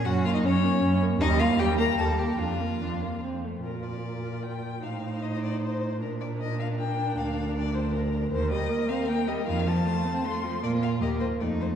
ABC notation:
X:1
M:3/4
L:1/16
Q:1/4=154
K:Gblyd
V:1 name="Violin"
g2 f e d6 z2 | [K:Bb] e2 f2 g2 b2 a2 g2 | f8 z4 | B2 d6 g4 |
f4 e2 d2 c4 | B2 d2 e2 f2 g4 | f4 d2 c2 B4 | c2 e4 f2 g2 e2 |
f2 a6 c'4 | d2 f2 e2 c2 d2 c2 |]
V:2 name="Violin"
G2 F E D6 z2 | [K:Bb] E2 F2 G2 B2 A2 G2 | F8 z4 | B12 |
c12 | B12- | B12 | B12 |
F12 | F4 G2 F2 E4 |]
V:3 name="Viola"
D2 B,2 D2 B,2 D2 B,2 | [K:Bb] G,2 B,2 G,2 B,2 G,2 B,2 | D2 B,2 D2 B,2 C2 A,2 | F12 |
E12 | D12- | D12 | E,2 G,2 B,2 C2 B,2 G,2 |
E,2 F,2 A,2 C2 A,2 F,2 | B,4 B,4 A,4 |]
V:4 name="Cello" clef=bass
G,,4 G,,4 G,,4 | [K:Bb] E,,4 E,,4 E,,4 | F,,4 F,,4 F,,4 | B,,12 |
A,,12 | B,,12 | D,,12 | E,,4 z8 |
F,,4 z8 | B,,4 E,,4 F,,4 |]